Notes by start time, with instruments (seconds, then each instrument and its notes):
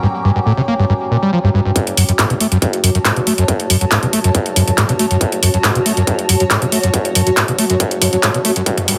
Already playing: synth drone F#3 C#4, ambient pad G5 A#5 D6
0.03 acid bass G2
0.25 acid bass G2
0.36 acid bass G2
0.46 acid bass A2
0.57 acid bass C3
0.68 acid bass A#3
0.79 acid bass G2
0.89 acid bass G2
1.11 acid bass A#2
1.22 acid bass G3
1.33 acid bass F3
1.44 acid bass G2
1.54 acid bass G2
1.65 acid bass G2
1.76 acid bass F#2, ambient pad F#4, kick, closed hi-hat
1.87 closed hi-hat
1.97 acid bass F#2, ambient pad C#5, open hi-hat
2.09 acid bass F#2, closed hi-hat
2.19 acid bass G#2, ambient pad A5, kick, clap, closed hi-hat
2.30 acid bass B2, closed hi-hat
2.40 acid bass A3, open hi-hat
2.52 acid bass F#2, closed hi-hat
2.62 acid bass F#2, kick, closed hi-hat
2.73 closed hi-hat
2.84 acid bass F#2, open hi-hat
2.95 acid bass F#2, closed hi-hat
3.05 acid bass G#2, kick, clap, closed hi-hat
3.16 acid bass B2, closed hi-hat
3.27 acid bass A3, open hi-hat
3.38 acid bass F#2, closed hi-hat
3.48 acid bass F#2, kick, closed hi-hat
3.60 closed hi-hat
3.70 acid bass F#2, open hi-hat
3.81 acid bass F#2, closed hi-hat
3.91 acid bass G#2, kick, clap, closed hi-hat
4.03 acid bass B2, closed hi-hat
4.13 acid bass A3, open hi-hat
4.24 acid bass F#2, closed hi-hat
4.35 acid bass F#2, kick, closed hi-hat
4.46 closed hi-hat
4.56 acid bass F#2, kick, open hi-hat
4.67 acid bass F#2, closed hi-hat
4.78 acid bass G#2, kick, clap, closed hi-hat
4.89 acid bass B2, closed hi-hat
4.99 acid bass A3, open hi-hat
5.11 acid bass F#2, closed hi-hat
5.21 acid bass F#2, kick, closed hi-hat
5.32 closed hi-hat
5.43 acid bass F#2, open hi-hat
5.54 acid bass F#2, closed hi-hat
5.64 acid bass G#2, kick, clap, closed hi-hat
5.75 acid bass B2, closed hi-hat
5.86 acid bass A3, open hi-hat
5.97 acid bass F#2, closed hi-hat
6.07 acid bass F#2, kick, closed hi-hat
6.19 closed hi-hat
6.29 acid bass F#2, open hi-hat
6.40 acid bass F#2, closed hi-hat
6.50 acid bass G#2, kick, clap, closed hi-hat
6.62 acid bass B2, closed hi-hat
6.72 acid bass A3, open hi-hat
6.83 acid bass F#2, closed hi-hat
6.94 acid bass F#2, kick, closed hi-hat
7.05 closed hi-hat
7.15 acid bass F#2, open hi-hat
7.27 acid bass F#2, closed hi-hat
7.37 acid bass G#2, kick, clap, closed hi-hat
7.48 acid bass B2, closed hi-hat
7.59 acid bass A3, open hi-hat
7.70 acid bass F#2, closed hi-hat
7.80 acid bass F#2, kick, closed hi-hat
7.91 closed hi-hat
8.02 acid bass F#2, kick, open hi-hat
8.13 acid bass F#2, closed hi-hat
8.23 acid bass G#2, kick, clap, closed hi-hat
8.34 acid bass B2, closed hi-hat
8.45 acid bass A3, open hi-hat
8.56 acid bass F#2, closed hi-hat
8.66 acid bass G2, ambient pad G4, kick, closed hi-hat, riser
8.78 closed hi-hat, mid tom
8.88 acid bass G2, ambient pad A#5, open hi-hat